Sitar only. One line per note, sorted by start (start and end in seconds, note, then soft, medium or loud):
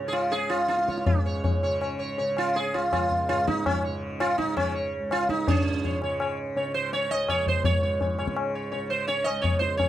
0.08 0.13 G#4 medium
0.12 0.32 F4 medium
0.32 0.51 G#4 medium
0.50 0.67 F4 medium
0.68 1.06 F4 medium
0.88 1.05 C#5 soft
1.06 1.58 C#4 medium
1.26 1.43 C#5 soft
1.44 1.61 C#5 soft
1.63 1.79 C#5 soft
1.81 1.98 C#5 soft
1.99 2.16 C#5 soft
2.18 2.35 C#5 soft
2.38 2.56 F4 medium
2.56 2.74 G#4 medium
2.74 2.91 F4 medium
2.93 3.28 F4 medium
3.29 3.47 F4 medium
3.47 3.66 D#4 medium
3.66 3.83 C#4 medium
3.84 4.01 C#5 soft
4.20 4.37 F4 medium
4.38 4.56 D#4 medium
4.57 4.73 C#4 medium
4.75 4.92 C#5 soft
5.12 5.29 F4 medium
5.30 5.48 D#4 medium
5.48 5.99 C#4 medium
5.48 5.65 C#5 soft
5.84 6.01 C#5 soft
6.03 6.20 C#5 soft
6.21 6.38 C#5 soft
6.57 6.74 C#5 soft
6.74 6.93 C5 medium
6.93 7.10 C#5 medium
7.11 7.29 D#5 medium
7.29 7.48 C#5 medium
7.48 7.64 C5 medium
7.65 7.82 C#5 medium
7.83 8.00 C#5 soft
8.02 8.18 C#5 soft
8.19 8.36 C#5 soft
8.55 8.70 C#5 soft
8.72 8.89 C#5 soft
8.90 9.07 C5 medium
9.08 9.26 C#5 medium
9.24 9.44 D#5 medium
9.42 9.59 C#5 medium
9.59 9.77 C5 medium
9.77 9.89 C#5 medium